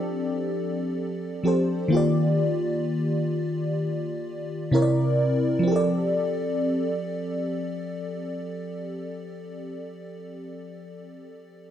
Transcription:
Already playing: fm electric piano F3 C4 G4 A4 D5, analog synth pad F3 C4 D4 G4 A4
1.43 fm electric piano F3 C4 G4 A4
1.48 fm electric piano C5
1.88 fm electric piano D#3 A#3
1.92 fm electric piano F4 G4
1.97 fm electric piano D5
4.71 fm electric piano C3 C4 E4 A#4
4.76 fm electric piano C#5
4.82 fm electric piano D5
5.59 fm electric piano F3
5.63 fm electric piano C4
5.67 fm electric piano G4
5.72 fm electric piano A4
5.76 fm electric piano D5

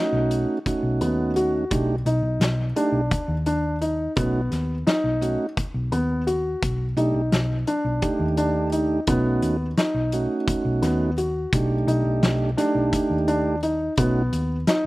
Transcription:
Already playing: tonewheel organ A3 C#4 D#4 F#4, grand piano D#4
0.13 picked electric bass B1
0.31 closed hi-hat
0.66 tonewheel organ A3 C#4 D#4 F#4, kick, closed hi-hat
0.83 picked electric bass B1
1.01 picked electric bass D#2, grand piano B3, closed hi-hat
1.36 grand piano F#4, closed hi-hat
1.71 picked electric bass B1, tonewheel organ A3 D4 D#4 G4, kick, closed hi-hat
2.06 picked electric bass B1, grand piano D#4, closed hi-hat
2.23 picked electric bass B1
2.40 picked electric bass B1, snare, closed hi-hat
2.76 tonewheel organ A3 D4 D#4 G4, grand piano D4, closed hi-hat
2.92 picked electric bass B1
3.11 kick, closed hi-hat
3.28 picked electric bass D#2
3.46 grand piano D4, closed hi-hat
3.81 grand piano D#4, closed hi-hat
4.16 picked electric bass B1, tonewheel organ A3 C#4 D#4 F#4, grand piano B3, kick, closed hi-hat
4.51 picked electric bass D#2, snare, closed hi-hat
4.87 grand piano D#4, snare, closed hi-hat
5.04 picked electric bass B1
5.21 tonewheel organ A3 C#4 D#4 F#4, closed hi-hat
5.57 kick, closed hi-hat
5.74 picked electric bass B1
5.91 picked electric bass D#2, grand piano B3, closed hi-hat
6.27 grand piano F#4, closed hi-hat
6.62 picked electric bass B1, kick, closed hi-hat
6.97 picked electric bass B1, tonewheel organ A3 D4 D#4 G4, grand piano D#4, closed hi-hat
7.14 picked electric bass B1
7.32 picked electric bass B1, snare, closed hi-hat
7.67 grand piano D4, closed hi-hat
7.85 picked electric bass B1
8.02 tonewheel organ A3 D4 D#4 G4, kick, closed hi-hat
8.19 picked electric bass D#2
8.37 grand piano D4, closed hi-hat
8.72 grand piano D#4, closed hi-hat
9.07 picked electric bass B1, tonewheel organ A3 C#4 D#4 F#4, grand piano B3, kick, closed hi-hat
9.42 picked electric bass D#2, closed hi-hat
9.78 grand piano D#4, snare, closed hi-hat
9.94 picked electric bass B1
10.12 tonewheel organ A3 C#4 D#4 F#4, closed hi-hat
10.48 kick, closed hi-hat
10.65 picked electric bass B1
10.82 picked electric bass D#2, grand piano B3, snare, closed hi-hat
11.18 grand piano F#4, closed hi-hat
11.53 picked electric bass B1, tonewheel organ A3 D4 D#4 G4, kick, closed hi-hat
11.87 picked electric bass B1, grand piano D#4, closed hi-hat
12.05 picked electric bass B1
12.23 picked electric bass B1, snare, closed hi-hat
12.57 tonewheel organ A3 D4 D#4 G4, grand piano D4, snare, closed hi-hat
12.75 picked electric bass B1
12.93 kick, closed hi-hat
13.10 picked electric bass D#2
13.28 grand piano D4, closed hi-hat
13.63 grand piano D#4, closed hi-hat
13.97 picked electric bass B1, tonewheel organ A3 C#4 D#4 F#4, grand piano B3, kick, closed hi-hat
14.32 picked electric bass D#2, closed hi-hat
14.67 grand piano D#4, snare, closed hi-hat

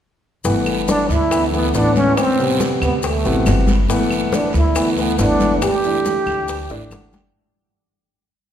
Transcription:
0.44 upright bass G1, grand piano E3 A3 B3, high bongo, high conga, long guiro, maracas
0.66 high bongo, high conga, claves, maracas
0.88 trombone D4, high bongo, high conga, short guiro, maracas
1.09 upright bass D2, trombone E4, short guiro, maracas
1.30 grand piano E3 A3 B3, high bongo, high conga, long guiro, claves, maracas
1.52 grand piano E3 A3 B3, trombone B3, high bongo, high conga, maracas
1.73 upright bass A1, grand piano E3 A3 B3, trombone D4, high bongo, low bongo, high conga, short guiro, maracas
1.95 trombone C#4, high bongo, high conga, short guiro, maracas
2.17 trombone C4, high bongo, high conga, long guiro, claves, maracas
2.39 grand piano C3 G3 B3, high bongo, high conga, maracas
2.60 high bongo, high conga, short guiro, maracas
2.81 upright bass D2, trombone B3, high conga, short guiro, claves, maracas
3.02 high bongo, high conga, long guiro, maracas
3.07 trombone A3
3.24 upright bass A1, grand piano C3 E3 F#3 B3, high bongo, high conga, maracas
3.46 upright bass G1, high bongo, low bongo, high conga, short guiro, claves, maracas
3.67 high bongo, high conga, short guiro, maracas
3.89 grand piano E3 A3 B3, high bongo, high conga, long guiro, maracas
4.11 high bongo, high conga, claves, maracas
4.32 trombone D4, high bongo, high conga, short guiro, maracas
4.53 upright bass D2, trombone E4, short guiro, maracas
4.75 grand piano E3 A3 B3, high bongo, high conga, long guiro, claves, maracas
4.97 grand piano E3 A3 B3, trombone B3, high bongo, high conga, maracas
5.18 upright bass G1, grand piano E3 A3 B3, trombone D4, high bongo, low bongo, high conga, short guiro, maracas
5.40 high bongo, high conga, short guiro, maracas
5.61 trombone G4, high bongo, high conga, long guiro, claves, maracas
5.83 grand piano E3 A3 D4, high bongo, high conga, maracas
6.05 high bongo, high conga, short guiro, maracas
6.26 upright bass D2, high conga, short guiro, claves, maracas
6.48 high bongo, high conga, long guiro, maracas
6.69 upright bass A1, grand piano E3 A3 D4 E5, high bongo, high conga, maracas
6.90 upright bass G1, grand piano F#5, high bongo, high conga, short guiro, claves, maracas
7.13 grand piano G5, low bongo, high conga, short guiro, maracas

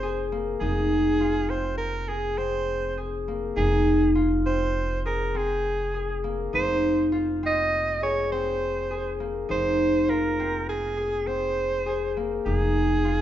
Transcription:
Already playing: upright bass F1, harp A#3 C4 D#4 F4, soprano saxophone C5
0.03 harp G#4
0.32 harp A#3
0.60 upright bass F1, harp D#4, soprano saxophone G#4
1.20 harp F4
1.49 harp C4, soprano saxophone C5
1.78 soprano saxophone A#4
2.08 soprano saxophone G#4, harp G#4
2.38 harp C4, soprano saxophone C5
2.97 harp G#4
3.28 harp A#3
3.56 upright bass F1, harp D#4, soprano saxophone G#4
4.15 harp F4
4.46 harp C4, soprano saxophone C5
5.05 harp G#4, soprano saxophone A#4
5.35 harp C4, soprano saxophone G#4
5.94 harp G#4
6.24 harp A#3
6.53 upright bass F1, harp D#4, soprano saxophone C5
7.12 harp F4
7.43 harp C4, soprano saxophone D#5
8.02 harp G#4, soprano saxophone C#5
8.32 harp C4, soprano saxophone C5
8.91 harp G#4
9.20 harp A#3
9.49 upright bass F1, harp D#4, soprano saxophone C5
10.08 harp F4, soprano saxophone A#4
10.39 harp C4
10.69 soprano saxophone G#4
10.97 harp G#4
11.27 harp C4, soprano saxophone C5
11.86 harp G#4
12.17 harp A#3
12.46 upright bass F1, harp D#4, soprano saxophone G#4
13.05 harp F4

